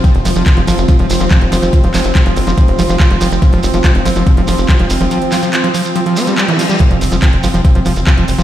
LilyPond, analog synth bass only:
\new Staff \with { instrumentName = "Analog synth bass" } { \clef bass \time 4/4 \key c \phrygian \tempo 4 = 142 r16 f,,16 f,,16 f,,16 r16 f,,16 g,,16 f,,16 r16 f,,16 f,,16 f,,16 r16 f,,16 f,,16 f,,16 | r16 f,,16 f,,16 f,,16 r16 f,,16 g,,16 f,,16 r16 f,,16 f,,16 f,,16 r16 f,,16 f,,16 f,,16 | r16 f,,16 f,,16 f,,16 r16 f,,16 g,,16 f,,16 r16 f,,16 f,,16 f,,16 r16 f,,16 f,,16 f,,16 | r1 |
r16 f,,16 f,,16 f,,16 r16 f,,16 g,,16 f,,16 r16 f,,16 f,,16 f,,16 r16 f,,16 f,,16 f,,16 | }